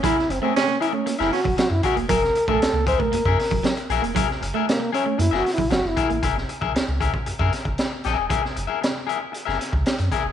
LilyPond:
<<
  \new Staff \with { instrumentName = "Clean electric guitar" } { \time 4/4 \key fis \mixolydian \tempo 4 = 116 <gis' ais' e''>16 r8 <gis' ais' e''>16 r8 <gis' ais' e''>16 r8 <gis' ais' e''>16 r4 <gis' ais' e''>16 r16 | <gis' ais' e''>16 r8 <gis' ais' e''>16 r8 <gis' ais' e''>16 r8 <gis' ais' e''>16 r4 <gis' ais' e''>16 r16 | <gis' ais' e''>16 r8 <gis' ais' e''>16 r8 <gis' ais' e''>16 r8 <gis' ais' e''>16 r4 <gis' ais' e''>16 r16 | <gis' ais' e''>16 r8 <gis' ais' e''>16 r8 <gis' ais' e''>16 r8 <gis' ais' e''>16 r4 <gis' ais' e''>8 |
<gis' ais' e''>16 r8 <gis' ais' e''>16 r8 <gis' ais' e''>16 r8 <gis' ais' e''>16 r4 <gis' ais' e''>16 r16 | }
  \new Staff \with { instrumentName = "Trombone" } { \time 4/4 \key fis \mixolydian e'8 bis16 bis16 cis'8 e'16 cis'8 e'16 fis'8 fis'16 e'16 fis'8 | ais'8. a'8. bis'16 ais'4. r8. | r4 ais8 cis'8 \tuplet 3/2 { e'8 fis'8 e'8 fis'8 e'4 } | r1 |
r1 | }
  \new Staff \with { instrumentName = "Baritone saxophone" } { \time 4/4 \key fis \mixolydian e'8 r16 cis'16 cis'8 r8. e'16 cis'16 r4 r16 | r1 | r1 | r1 |
r1 | }
  \new Staff \with { instrumentName = "Clean electric guitar" } { \time 4/4 \key fis \mixolydian fis16 r8 a16 r16 ais16 r16 a16 ais16 r8 fis16 fis16 r8 ais16 | fis16 r8 a16 r16 ais16 r16 a16 ais16 r8 fis16 fis16 r8 ais16 | fis16 r8 a16 r16 ais16 r16 a16 ais16 r8 fis16 fis16 r8 ais16 | r1 |
r1 | }
  \new Staff \with { instrumentName = "Sub bass" } { \clef bass \time 4/4 \key fis \mixolydian r8 fis,,16 r4. fis,,16 r16 fis,,16 r16 fis,16 r16 e,,16 | fis,,8 r16 ais,,16 cis,16 cis,8 r16 fis,16 fis,16 r16 fis,,16 r8 ais,,16 e,,16 | r8 fis,,16 r4 r16 fis,16 fis,,16 r16 ais,,16 fis,,16 fis,,16 r16 a,,16 | fis,,8 r16 ais,,16 cis,16 cis,8 r16 fis,16 fis,16 r16 fis,,16 r8 ais,,16 e,,16 |
r8 fis,,16 r4. fis,,16 r16 cis,16 r16 fis,16 r16 e,,16 | }
  \new DrumStaff \with { instrumentName = "Drums" } \drummode { \time 4/4 <hh bd>16 sn16 hh8 <hh sn>8 hh8 hh16 sn16 <hho sn>16 bd16 <hh sn>16 sn16 <hh bd>16 hh16 | <hh bd>16 sn16 hh16 bd16 <hh sn>8 <hh bd>16 bd16 hh16 bd16 <hho sn>16 bd16 <hh sn>16 hh16 hh16 hh16 | <hh bd>16 sn16 hh8 <hh sn>8 hh8 hh16 sn16 <hho sn>16 bd16 <hh sn>16 sn16 <hh bd>16 hh16 | <hh bd>16 sn16 hh16 bd16 <hh sn>8 <hh bd>16 bd16 hh16 bd16 <hh sn>16 bd16 <hh sn>8 <hh sn>8 |
<hh bd>16 sn16 hh8 <hh sn>8 hh8 hh16 sn16 <hh sn>16 bd16 <hh sn>16 <hh sn>16 <hh bd>8 | }
>>